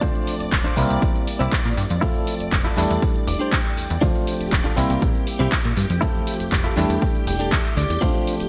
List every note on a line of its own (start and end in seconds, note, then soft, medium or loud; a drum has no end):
0.00 0.72 F3 medium
0.00 0.72 A3 medium
0.00 0.73 C4 medium
0.00 0.33 D4 loud
0.00 0.73 D4 medium
0.00 0.34 F4 loud
0.00 0.34 C5 loud
0.00 4.03 D5 medium
0.00 4.03 D6 medium
0.00 kick loud
0.00 closed hi-hat soft
0.00 tambourine medium
0.15 closed hi-hat soft
0.15 tambourine soft
0.27 open hi-hat loud
0.27 tambourine medium
0.40 0.50 D1 soft
0.40 closed hi-hat medium
0.40 tambourine soft
0.52 0.69 D1 loud
0.52 kick loud
0.52 clap loud
0.52 closed hi-hat soft
0.64 0.76 D4 medium
0.64 0.77 F4 medium
0.64 0.78 C5 loud
0.64 closed hi-hat soft
0.76 0.86 C2 loud
0.76 1.97 G3 medium
0.76 1.97 A#3 medium
0.76 1.27 C4 medium
0.76 1.97 C4 medium
0.76 1.27 E4 medium
0.76 1.98 E4 loud
0.76 1.28 A#4 loud
0.76 open hi-hat loud
0.76 tambourine loud
0.90 0.98 C2 medium
0.90 closed hi-hat soft
0.90 tambourine soft
1.02 1.11 A#1 medium
1.02 kick loud
1.02 closed hi-hat medium
1.02 tambourine medium
1.15 closed hi-hat soft
1.15 tambourine soft
1.27 open hi-hat loud
1.27 tambourine loud
1.39 1.48 C2 medium
1.39 1.58 C4 medium
1.39 1.59 E4 medium
1.39 1.59 G4 loud
1.39 closed hi-hat soft
1.39 tambourine soft
1.52 kick loud
1.52 clap loud
1.52 closed hi-hat medium
1.52 tambourine medium
1.65 1.73 A#2 loud
1.65 closed hi-hat soft
1.65 tambourine soft
1.76 1.86 G2 medium
1.76 muted clean electric guitar stroke soft
1.76 open hi-hat loud
1.76 tambourine medium
1.90 2.21 F2 medium
1.90 closed hi-hat medium
1.90 tambourine soft
2.01 2.72 F3 medium
2.01 2.72 A3 medium
2.01 2.73 C4 medium
2.01 2.33 E4 loud
2.01 2.34 F4 loud
2.01 2.34 A4 loud
2.01 2.73 E5 medium
2.01 kick loud
2.01 closed hi-hat soft
2.01 tambourine medium
2.15 closed hi-hat soft
2.15 tambourine soft
2.27 open hi-hat loud
2.27 tambourine loud
2.40 2.50 F1 soft
2.40 closed hi-hat soft
2.40 tambourine soft
2.52 2.69 F1 loud
2.52 kick loud
2.52 clap loud
2.52 closed hi-hat soft
2.65 2.77 E4 medium
2.65 2.77 F4 medium
2.65 2.77 A4 medium
2.65 closed hi-hat soft
2.65 tambourine soft
2.76 2.86 E2 loud
2.76 3.97 G3 medium
2.76 3.97 A3 medium
2.76 3.27 D4 medium
2.76 3.98 D4 medium
2.76 3.98 E4 loud
2.76 3.27 G4 medium
2.76 3.28 A4 loud
2.76 clap soft
2.76 open hi-hat medium
2.76 tambourine medium
2.91 2.98 E2 medium
2.91 closed hi-hat soft
2.91 tambourine soft
3.02 kick loud
3.02 closed hi-hat soft
3.02 tambourine medium
3.15 closed hi-hat soft
3.15 tambourine soft
3.27 3.36 E1 medium
3.27 3.51 D5 medium
3.27 open hi-hat loud
3.27 tambourine medium
3.39 3.58 D4 medium
3.39 3.59 G4 medium
3.39 3.59 C5 medium
3.39 closed hi-hat soft
3.39 tambourine soft
3.52 3.99 G5 medium
3.52 kick loud
3.52 clap loud
3.52 closed hi-hat soft
3.66 closed hi-hat soft
3.66 tambourine soft
3.76 3.88 E2 soft
3.76 muted clean electric guitar stroke soft
3.76 open hi-hat medium
3.76 tambourine medium
3.90 3.98 E2 medium
3.90 closed hi-hat soft
3.90 tambourine soft
4.01 4.11 D2 loud
4.01 4.72 F3 medium
4.01 4.72 A3 medium
4.01 4.72 C4 medium
4.01 4.33 D4 loud
4.01 4.73 D4 medium
4.01 4.34 F4 loud
4.01 8.49 G4 medium
4.01 4.34 C5 loud
4.01 8.49 G5 medium
4.01 kick loud
4.01 closed hi-hat medium
4.01 tambourine medium
4.15 closed hi-hat soft
4.15 tambourine soft
4.27 open hi-hat loud
4.27 tambourine medium
4.41 4.50 D1 soft
4.41 closed hi-hat soft
4.41 tambourine soft
4.52 4.69 D1 loud
4.52 kick loud
4.52 clap loud
4.52 closed hi-hat medium
4.52 tambourine medium
4.64 4.76 D4 medium
4.64 4.77 F4 medium
4.64 4.78 A4 medium
4.64 closed hi-hat soft
4.64 tambourine soft
4.76 4.86 C2 loud
4.76 5.97 G3 medium
4.76 5.97 A#3 medium
4.76 5.27 C4 medium
4.76 5.97 C4 medium
4.76 5.27 E4 medium
4.76 5.98 E4 loud
4.76 5.28 A#4 loud
4.76 open hi-hat medium
4.76 tambourine medium
4.90 4.98 C2 medium
4.90 closed hi-hat soft
4.90 tambourine soft
5.02 5.11 A#1 medium
5.02 kick loud
5.02 closed hi-hat medium
5.02 tambourine soft
5.15 closed hi-hat soft
5.15 tambourine soft
5.27 open hi-hat loud
5.27 tambourine medium
5.39 5.48 C2 medium
5.39 5.58 C4 medium
5.39 5.59 E4 medium
5.39 5.59 G4 medium
5.39 closed hi-hat soft
5.39 tambourine soft
5.52 kick loud
5.52 clap loud
5.52 closed hi-hat soft
5.52 tambourine medium
5.65 5.73 A#2 loud
5.65 closed hi-hat soft
5.65 tambourine soft
5.76 5.86 G2 medium
5.76 muted clean electric guitar stroke soft
5.76 open hi-hat medium
5.76 tambourine medium
5.90 6.21 F2 medium
5.90 closed hi-hat soft
5.90 tambourine soft
6.01 6.72 F3 medium
6.01 6.72 A3 medium
6.01 6.72 C4 medium
6.01 6.33 E4 loud
6.01 6.34 F4 loud
6.01 6.34 A4 loud
6.01 6.73 E5 medium
6.01 kick loud
6.01 closed hi-hat medium
6.01 tambourine soft
6.15 closed hi-hat soft
6.15 tambourine soft
6.27 open hi-hat loud
6.27 tambourine medium
6.40 6.50 F1 soft
6.40 closed hi-hat soft
6.40 tambourine soft
6.52 6.69 F1 loud
6.52 kick loud
6.52 clap loud
6.52 closed hi-hat medium
6.52 tambourine soft
6.64 6.77 E4 medium
6.64 6.77 F4 medium
6.64 6.77 A4 loud
6.64 closed hi-hat soft
6.64 tambourine soft
6.76 6.86 E2 loud
6.76 7.97 G3 medium
6.76 7.97 A3 medium
6.76 7.27 D4 medium
6.76 7.98 D4 medium
6.76 7.98 E4 loud
6.76 7.27 G4 medium
6.76 7.28 A4 loud
6.76 7.00 A5 medium
6.76 clap soft
6.76 open hi-hat medium
6.76 tambourine medium
6.90 6.98 E2 medium
6.90 closed hi-hat medium
6.90 tambourine soft
7.02 7.26 G5 medium
7.02 kick loud
7.02 closed hi-hat medium
7.02 tambourine medium
7.15 closed hi-hat soft
7.15 tambourine soft
7.27 7.54 E1 medium
7.27 7.51 G5 medium
7.27 open hi-hat loud
7.27 tambourine medium
7.39 7.58 D4 medium
7.39 7.59 G4 medium
7.39 7.59 A4 loud
7.39 closed hi-hat medium
7.39 tambourine soft
7.52 7.61 E2 medium
7.52 7.75 E5 medium
7.52 kick loud
7.52 clap loud
7.52 closed hi-hat medium
7.52 tambourine soft
7.65 closed hi-hat soft
7.65 tambourine soft
7.76 7.86 D2 loud
7.76 8.01 D5 medium
7.76 muted clean electric guitar stroke soft
7.76 open hi-hat medium
7.76 tambourine medium
7.90 7.98 E2 medium
7.90 closed hi-hat medium
7.90 tambourine soft
8.01 8.11 D2 medium
8.01 8.49 F3 medium
8.01 8.49 A3 medium
8.01 8.49 C4 medium
8.01 8.33 D4 loud
8.01 8.49 D4 medium
8.01 8.34 F4 loud
8.01 8.34 C5 loud
8.01 kick loud
8.01 closed hi-hat medium
8.01 tambourine medium
8.15 closed hi-hat soft
8.15 tambourine soft
8.27 open hi-hat loud
8.27 tambourine medium
8.40 8.49 D1 soft
8.40 closed hi-hat medium
8.40 tambourine soft